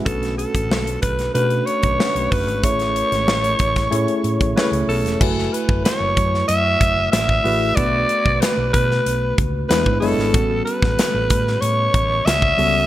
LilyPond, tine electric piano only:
\new Staff \with { instrumentName = "Tine electric piano" } { \time 4/4 \key fis \minor \tempo 4 = 93 <a cis' d' fis' b'>2 <a cis' d' fis' b'>4 <a cis' d' fis' b'>4 | <a cis' e' gis' cis''>2 <a cis' e' gis' cis''>4 <a cis' e' gis' cis''>4 | <a e' fis' b' gis''>2 r4. <a e' fis' gis' b'>8 | <a b d' fis' b'>2 r4 <gis b d' e' b'>8 <gis b d' e' cis''>8 |
<g b cis' fis' a'>2 r4. <g b cis' fis' a'>8 | }